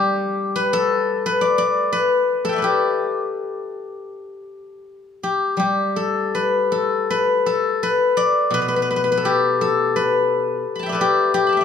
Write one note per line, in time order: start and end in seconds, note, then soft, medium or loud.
0.00 1.96 G3 medium
0.00 0.59 A3 soft
0.00 0.41 B3 soft
0.00 0.15 D4 soft
0.00 2.23 G4 medium
0.00 0.17 A4 medium
0.00 0.54 B4 medium
0.56 1.25 B4 medium
0.73 2.44 A4 medium
1.26 1.92 B4 medium
1.41 1.58 D5 medium
1.58 2.56 D5 medium
1.93 2.58 B4 medium
2.45 2.62 A4 medium
2.45 3.90 A5 soft
2.49 4.04 G5 soft
2.53 4.41 D5 soft
2.53 4.25 E5 soft
2.58 4.62 B4 soft
2.62 4.99 G4 medium
2.62 4.81 A4 soft
5.23 5.59 G4 soft
5.57 7.80 G3 soft
5.57 7.95 G4 medium
5.96 6.71 A4 medium
6.35 7.10 B4 medium
6.72 7.46 A4 medium
7.10 7.83 B4 medium
7.46 9.17 A4 medium
7.83 8.53 B4 medium
8.17 10.01 D5 medium
8.50 10.62 B2 soft
8.50 8.61 B4 medium
8.62 8.68 B4 soft
8.68 8.76 B4 medium
8.76 8.82 B4 soft
8.82 8.90 B4 medium
8.90 8.96 B4 soft
8.96 9.03 B4 medium
9.04 9.11 B4 soft
9.12 9.96 B4 medium
9.17 9.61 A4 soft
9.25 11.00 G4 medium
9.61 10.94 A4 medium
9.96 10.92 B4 medium
10.75 11.48 A5 soft
10.75 11.46 B5 soft
10.83 11.56 E5 soft
10.83 11.52 G5 soft
10.89 11.63 B4 soft
10.89 11.60 D5 soft
10.95 11.64 A4 soft
11.01 11.34 G4 medium
11.34 11.64 G4 medium
11.47 11.64 A5 soft
11.47 11.64 B5 soft
11.53 11.64 G5 soft
11.57 11.64 D5 soft
11.57 11.64 E5 soft